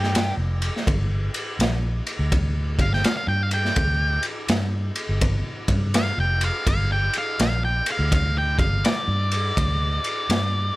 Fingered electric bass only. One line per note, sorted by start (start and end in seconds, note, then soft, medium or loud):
0.00 0.31 G2 loud
0.37 0.69 F1 medium
0.88 1.28 G1 medium
1.59 2.00 A#1 loud
2.19 2.80 D2 medium
2.79 3.01 G1 medium
3.27 3.70 G2 medium
3.77 4.17 D2 medium
4.49 4.90 G2 medium
5.09 5.41 G1 medium
5.68 6.11 G2 medium
6.18 6.49 F1 medium
6.67 7.08 G1 medium
7.40 7.80 A#1 medium
7.99 8.60 D2 loud
8.59 8.81 G1 medium
9.08 9.51 G2 medium
9.57 9.98 D2 medium
10.29 10.70 G2 medium